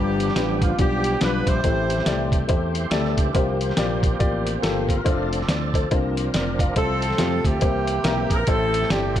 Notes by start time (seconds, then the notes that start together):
Already playing: G1 G2 F3 G3 B3 D4 F4 G4 A#4 B4 D5
0.20 closed hi-hat
0.28 snare
0.36 A1 G3 D4 F4 B4, snare, closed hi-hat
0.62 F4, kick, closed hi-hat
0.78 B1 G3 B3 D4 F4 G4, kick, closed hi-hat
1.04 closed hi-hat
1.21 B1 G3 D4 F4 B4, snare, closed hi-hat
1.47 A#1 E4 G4 C5, kick, closed hi-hat
1.64 A1 A2 E3 A3 C4 E4 F#4 G4 C5, kick, closed hi-hat
1.70 G4
1.90 closed hi-hat
1.98 snare
2.06 C2 A3 E4 G4 D5, snare, closed hi-hat
2.32 kick, closed hi-hat
2.48 E2 A3 E4 G4 C5, kick, closed hi-hat
2.74 G4 C5, closed hi-hat
2.90 D2 A3 E4 G4 A4 D5, snare, closed hi-hat
3.04 snare
3.17 C#2 D4 G4, kick, closed hi-hat
3.33 C2 C3 F3 A#3 C4 F4 G4 C5, kick, closed hi-hat
3.38 G4
3.61 closed hi-hat
3.69 snare
3.77 A#1 A#3 F4 G4 D5, snare, closed hi-hat
4.03 kick, closed hi-hat
4.19 A1 A#3 F4 G4 D5, kick, closed hi-hat
4.47 closed hi-hat
4.62 G1 A#3 F4 G4 A4 C5, snare, closed hi-hat
4.88 F4 A#4, kick, closed hi-hat
5.04 F1 F3 A3 C4 D4 F4 A4 C5, kick, closed hi-hat
5.33 closed hi-hat
5.41 snare
5.48 D2 D5, snare, closed hi-hat
5.74 A4 C5, kick, closed hi-hat
5.91 C2 C3 F3 A#3 C4 D4 F4 A4 C5, kick, closed hi-hat
5.96 A#4
6.17 closed hi-hat
6.34 F1 A#4 D5, snare, closed hi-hat
6.59 D5 F5, kick, closed hi-hat
6.76 C2 C3 A3 C4 F4 A4 C5, kick, closed hi-hat
7.02 closed hi-hat
7.11 snare
7.18 F2 A3 C4 F4 G4 A4, snare, closed hi-hat
7.44 D2 A#3 E4 G4, kick, closed hi-hat
7.60 C2 C3 E3 A#3 C4 E4 G4 C5, kick, closed hi-hat
7.87 closed hi-hat
8.04 B1 A#3 E4 G4 A#4, snare, closed hi-hat
8.30 A#1 A#4, kick, closed hi-hat
8.47 A1 A2 E3 A3 C4 E4 G4 A4 C5, kick, closed hi-hat
8.74 closed hi-hat
8.82 snare
8.90 G1 A3 E4 G4 D5, snare, closed hi-hat
9.16 A3 C4, kick, closed hi-hat